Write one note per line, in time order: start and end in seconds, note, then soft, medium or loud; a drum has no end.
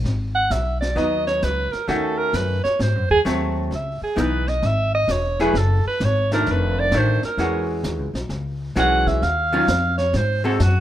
0.04 0.49 G#1 medium
0.04 brush sweep soft
0.04 snare soft
0.35 0.53 F#5 loud
0.50 0.95 B1 medium
0.50 0.80 E5 loud
0.50 snare medium
0.50 hi-hat pedal medium
0.81 0.99 D5 loud
0.81 snare soft
0.95 1.40 D#2 medium
0.95 1.66 F#3 soft
0.95 1.66 B3 medium
0.95 1.67 D#4 medium
0.95 1.26 D#5 loud
0.95 brush sweep medium
0.95 snare medium
1.27 1.45 C#5 loud
1.27 snare soft
1.42 1.71 C#2 medium
1.42 1.73 B4 loud
1.42 snare medium
1.42 hi-hat pedal soft
1.72 1.90 A#4 medium
1.72 muted upright bass stroke soft
1.72 snare soft
1.88 2.32 D#2 medium
1.88 2.58 D#3 medium
1.88 2.59 A3 medium
1.88 2.59 C#4 medium
1.88 2.59 F#4 medium
1.88 2.20 A4 medium
1.88 brush sweep medium
1.88 snare medium
2.18 2.37 A#4 loud
2.33 2.62 F#2 medium
2.33 2.63 B4 medium
2.33 snare medium
2.33 hi-hat pedal medium
2.64 2.83 C#5 loud
2.64 muted upright bass stroke soft
2.64 snare soft
2.79 2.95 G#2 medium
2.79 3.10 C5 medium
2.79 brush sweep soft
2.79 snare medium
2.95 3.10 F#2 medium
3.10 3.25 D#2 medium
3.10 3.20 G#4 loud
3.25 3.70 D#2 medium
3.25 3.71 F#3 medium
3.25 3.72 A3 medium
3.25 3.72 C4 medium
3.25 snare medium
3.25 hi-hat pedal medium
3.71 4.00 C#2 medium
3.71 brush sweep medium
3.71 snare soft
3.75 4.02 E5 medium
4.01 4.22 G#4 medium
4.01 muted upright bass stroke soft
4.16 4.62 B1 loud
4.16 4.44 E3 medium
4.16 4.45 B3 medium
4.16 4.45 D#4 medium
4.16 snare medium
4.16 hi-hat pedal medium
4.20 4.50 B4 loud
4.48 4.67 D#5 loud
4.48 snare soft
4.62 5.07 G#1 loud
4.62 4.94 E5 loud
4.62 brush sweep medium
4.62 snare medium
4.95 5.13 D#5 loud
5.08 5.53 E1 medium
5.08 5.44 C#5 loud
5.08 snare medium
5.08 hi-hat pedal medium
5.39 5.54 F#3 medium
5.39 5.54 A3 medium
5.39 5.54 E4 medium
5.39 5.54 G#4 medium
5.39 5.59 B4 medium
5.39 snare soft
5.54 5.83 F#1 medium
5.54 brush sweep medium
5.54 snare medium
5.58 5.87 A4 medium
5.85 6.06 B4 loud
5.85 muted upright bass stroke soft
6.00 6.45 G#1 loud
6.00 snare medium
6.00 hi-hat pedal medium
6.04 6.33 C#5 loud
6.32 6.90 D#3 medium
6.32 6.90 A3 medium
6.32 6.90 D4 medium
6.32 6.53 A#4 loud
6.32 snare medium
6.46 6.91 F1 medium
6.46 brush sweep medium
6.46 snare medium
6.51 6.81 B4 loud
6.79 6.99 D5 loud
6.91 7.20 A1 medium
6.91 7.21 D#3 medium
6.91 7.21 A3 medium
6.91 7.21 D4 medium
6.91 snare medium
6.91 hi-hat pedal medium
6.98 7.24 C5 loud
7.23 7.67 A#4 medium
7.23 muted upright bass stroke soft
7.23 snare soft
7.37 7.82 E2 medium
7.37 8.09 E3 medium
7.37 8.09 G#3 medium
7.37 8.09 C#4 medium
7.37 8.09 F#4 medium
7.37 brush sweep soft
7.37 snare medium
7.84 7.99 D#2 medium
7.84 snare medium
7.84 hi-hat pedal medium
7.99 8.13 C#2 medium
8.14 8.28 B1 medium
8.14 snare medium
8.29 8.74 C#2 medium
8.29 brush sweep medium
8.29 snare medium
8.76 9.20 B1 loud
8.76 9.22 E3 medium
8.76 9.22 G#3 medium
8.76 9.22 C#4 medium
8.76 9.22 F#4 medium
8.76 9.09 F#5 loud
8.76 snare medium
8.76 hi-hat pedal medium
9.07 9.24 E5 loud
9.07 kick medium
9.07 snare soft
9.22 9.66 D#2 medium
9.22 9.97 F5 loud
9.22 brush sweep medium
9.22 snare medium
9.53 9.66 D#3 medium
9.53 9.67 F#3 medium
9.53 9.66 C#4 medium
9.53 9.67 F4 medium
9.68 10.12 F2 loud
9.68 snare medium
9.68 hi-hat pedal medium
9.98 10.17 C#5 loud
9.98 snare soft
10.13 10.58 G#2 loud
10.13 10.45 C5 loud
10.13 brush sweep medium
10.13 snare medium
10.44 10.58 G#3 medium
10.44 10.58 C4 medium
10.44 10.61 D#4 medium
10.44 10.58 F#4 medium
10.44 10.58 A4 medium
10.60 10.80 F#2 loud
10.60 10.80 F#4 loud
10.60 snare medium
10.60 hi-hat pedal medium